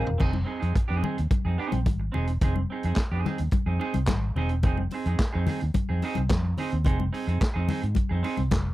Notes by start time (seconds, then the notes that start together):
Already playing: F3 C4 D#4 F4 A#4 F5
0.05 E1, muted clean electric guitar stroke, floor tom
0.18 F1 C4 D#4 G#4, kick, crash, low conga
0.32 muted clean electric guitar stroke, high conga
0.45 C4 D#4 G#4
0.60 F2 C4 D#4 G#4, closed hi-hat
0.74 muted clean electric guitar stroke, muted fingered electric bass stroke, kick, closed hi-hat, muted conga
0.88 F2 C4 D#4 G#4
1.03 C4 D#4 G#4, muted conga, high conga, low conga
1.18 D#2, muted clean electric guitar stroke, closed hi-hat
1.31 muted fingered electric bass stroke, muted clean electric guitar stroke, kick, closed hi-hat, high conga
1.45 F2 C4 D#4 G#4
1.58 C4 D#4 G#4
1.72 A#1, muted clean electric guitar stroke, closed hi-hat, high conga
1.86 G#1, muted clean electric guitar stroke, kick, closed hi-hat, muted conga, high conga
2.00 muted clean electric guitar stroke
2.12 E1 C4 D#4 G#4, muted conga, low conga
2.27 muted clean electric guitar stroke, closed hi-hat
2.41 F1 C4 D#4 G#4, kick, closed hi-hat, muted conga, low conga
2.55 muted clean electric guitar stroke, high conga
2.70 C4 D#4 G#4
2.83 F2 C4 D#4 G#4, closed hi-hat
2.96 muted fingered electric bass stroke, muted clean electric guitar stroke, kick, snare, clap, closed hi-hat
3.12 F2 C4 D#4 G#4
3.24 C4 D#4 G#4, snare, high conga, low conga
3.38 D#2, muted clean electric guitar stroke, closed hi-hat
3.51 muted fingered electric bass stroke, muted clean electric guitar stroke, kick, closed hi-hat, muted conga, high conga
3.66 F2 C4 D#4 G#4
3.79 C4 D#4 G#4, muted conga
3.94 C2, muted clean electric guitar stroke, closed hi-hat, high conga
4.07 G#1, muted clean electric guitar stroke, kick, snare, clap, closed hi-hat, muted conga, high conga
4.22 muted clean electric guitar stroke
4.35 E1 C4 D#4 G#4, low conga
4.49 muted clean electric guitar stroke, closed hi-hat
4.63 F1 C4 D#4 G#4, kick, closed hi-hat, muted conga, low conga
4.77 muted clean electric guitar stroke, high conga
4.90 C4 D#4 G#4, open hi-hat, muted conga
5.05 F2 C4 D#4 G#4, closed hi-hat
5.19 muted fingered electric bass stroke, kick, snare, clap, closed hi-hat, muted conga
5.33 F2 C4 D#4 G#4
5.47 C4 D#4 G#4, snare, open hi-hat, high conga, low conga
5.61 D#2, muted clean electric guitar stroke, closed hi-hat
5.74 muted fingered electric bass stroke, muted clean electric guitar stroke, kick, closed hi-hat, muted conga, high conga
5.89 F2 C4 D#4 G#4
6.02 C4 D#4 G#4, open hi-hat, muted conga
6.15 C2, muted clean electric guitar stroke, closed hi-hat, high conga
6.30 F2, muted clean electric guitar stroke, kick, snare, clap, closed hi-hat, muted conga, high conga
6.45 muted clean electric guitar stroke
6.57 C4 D#4 G#4, open hi-hat, low conga
6.71 D#2, muted clean electric guitar stroke, closed hi-hat
6.84 F1 C4 D#4 G#4, kick, closed hi-hat, muted conga, low conga
6.99 muted clean electric guitar stroke, high conga
7.13 C4 D#4 G#4, open hi-hat
7.27 F2 C4 D#4 G#4, closed hi-hat
7.40 muted clean electric guitar stroke, muted fingered electric bass stroke, kick, snare, clap, closed hi-hat, muted conga
7.54 F2 C4 D#4 G#4
7.68 C4 D#4 G#4, open hi-hat, high conga, low conga
7.82 G#2, muted clean electric guitar stroke, closed hi-hat
7.95 muted clean electric guitar stroke, muted fingered electric bass stroke, kick, closed hi-hat, muted conga, high conga
8.09 F2 C4 D#4 G#4
8.23 C4 D#4 G#4, open hi-hat, muted conga
8.37 C2, muted clean electric guitar stroke, closed hi-hat, high conga
8.51 F1, muted clean electric guitar stroke, kick, snare, clap, closed hi-hat, high conga
8.65 muted clean electric guitar stroke